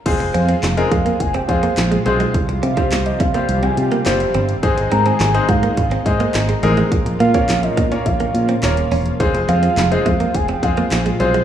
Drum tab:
CC |x---------------|----------------|----------------|----------------|
HH |xxxxxxxxxxxxxxxx|xxxxxxxxxxxxxxxx|xxxxxxxxxxxxxxxx|xxxxxxxxxxxxxxox|
CP |----x-------x---|----x-------x---|----x-------x---|----x-------x---|
SD |----o-------o---|----o-------o---|----o-------o---|----o-------o---|
BD |o-----o-o-o-----|o--o--o---------|o-----o-o-o-----|o--o--o-o-------|

CC |----------------|
HH |xxxxxxxxxxxxxxxx|
CP |----x-------x---|
SD |----o-------o---|
BD |o-----o-o-o-----|